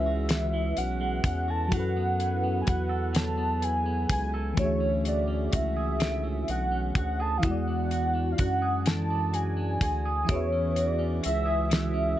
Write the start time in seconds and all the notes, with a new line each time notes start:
Already playing: C#2 E3 G#3 C#4 E4 F#4 G#4 B4 E5
0.06 F#4
0.29 E3, snare, closed hi-hat
0.54 G#3
0.77 B1 C#4 F#5, closed hi-hat
1.01 G#3
1.24 E2 C#4 F#5, kick, closed hi-hat
1.48 F#4 A5
1.68 F#3 E4, kick, closed hi-hat
1.72 F#2 F#3 F#4 F#5
1.77 A4 B4
1.97 B3
2.20 E4, closed hi-hat
2.44 B3
2.62 G#5
2.66 E2 E4 F#5, kick, closed hi-hat
2.89 A4
3.13 F#3 A5, snare, closed hi-hat
3.38 B3
3.62 E4 G#5, closed hi-hat
3.86 B3
4.09 C#2 E4 G#5, kick, closed hi-hat
4.34 A4
4.54 D3 E3 A3, kick, closed hi-hat
4.58 D2 E4 F#4 C#5
4.63 G#4 E5
4.80 C#4
5.05 F#4 D5, closed hi-hat
5.28 C#4
5.52 C#2 F#4 E5, kick, closed hi-hat
5.77 G#4
6.00 D3, snare, closed hi-hat
6.24 C#4
6.48 B1 F#4 F#5, closed hi-hat
6.72 C#4
6.95 D2 F#4 F#5, kick, closed hi-hat
7.20 G#4 A5
7.38 E3 F5
7.42 E2 E3 E4 F#4 F#5, kick, closed hi-hat
7.48 G#3 D5
7.68 D4
7.91 F#4, closed hi-hat
8.15 D4
8.32 F5
8.38 F#2 F#4 F#5, kick, closed hi-hat
8.62 G#4
8.86 E3 A5, snare, closed hi-hat
9.10 D4
9.33 F#4 G#5, closed hi-hat
9.57 D4
9.81 D2 F#4 G#5, kick, closed hi-hat
10.05 G#4
10.25 E3 E4
10.29 E2 E3 F#4 G#4 C#5, kick, closed hi-hat
10.34 B4 E5
10.52 C#4
10.76 F#4 D5, closed hi-hat
10.99 C#4
11.23 C#2 F#4 E5, closed hi-hat
11.46 G#4
11.70 E3, snare, closed hi-hat
11.94 C#4